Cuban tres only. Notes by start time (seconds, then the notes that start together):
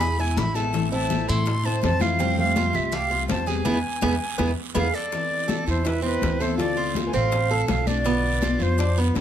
0.00 G#4
0.19 E4
0.56 A4
0.92 E4
1.29 A4
1.66 C5
2.02 F4
2.20 C4
2.57 F4
2.93 G4
3.11 F4
3.47 G#4
3.65 B3 E4 G#4
4.02 B3 E4 G#4
4.38 B3 E4 G#4
4.75 B3 E4 G#4
5.48 A4
5.85 E4
6.02 C4
6.40 A4
6.77 F4
7.14 C4
7.51 A4
7.87 D4
8.06 B3
8.42 F4
8.79 D4
8.98 B3